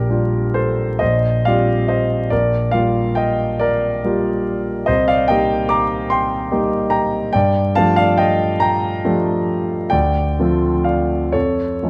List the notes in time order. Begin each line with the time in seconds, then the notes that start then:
Already playing: A#1 G4 A#4
0.10 G3 D4 F4 G4
0.54 A4 C5
0.99 A#1 C5 D#5
1.45 G3 C4 F4 G4 D5 F5
1.88 C5 D#5
2.30 A#1 A#4 D5
2.71 G3 A#3 F4 G4 D5 F5
3.15 D#5 G5
3.59 A#4 D5
4.04 G3 A#3 F4 G4
4.86 C2 C5 D#5
5.08 D5 F5
5.28 G3 A#3 D#4 G4 D#5 G5
5.69 A#5 D6
6.10 G5 C6
6.51 G3 A#3 D#4 G4
6.90 G5 A#5
7.33 G2 D5 G5
7.75 F3 A3 D4 G4 F5 A5
7.96 D5 F5
8.18 D#5 G5
8.60 G5 A#5
9.05 F3 A3 D4 G4
9.90 D2 D5 G5
10.39 F3 A3 C4 F4
10.84 D5 F5
11.32 F2 A4 C#5
11.83 F3 A3 C#4 D#4